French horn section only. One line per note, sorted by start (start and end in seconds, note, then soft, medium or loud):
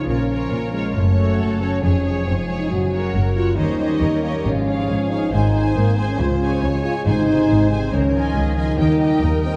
0.09 0.72 C#4 medium
0.73 0.95 G#3 medium
0.95 1.61 A3 medium
1.61 1.82 C#4 medium
1.83 2.26 C#4 medium
2.27 2.37 C4 medium
2.48 2.59 C#4 medium
2.60 2.70 D#4 medium
2.70 3.36 F#4 medium
3.37 3.58 F4 medium
3.56 4.22 D#4 medium
4.23 4.33 A#3 medium
4.46 5.10 C#4 medium
5.11 5.32 D#4 medium
5.33 5.76 D#4 medium
5.76 5.97 A#3 medium
5.98 6.09 C4 medium
6.09 6.20 C#4 medium
6.20 6.83 F4 medium
6.84 6.94 F4 medium
7.06 7.70 D#4 medium
7.70 7.92 C4 medium
7.92 8.56 C#4 medium
8.57 8.77 D#4 medium
8.78 9.21 D#4 medium
9.23 9.32 A#3 medium
9.45 9.50 C4 medium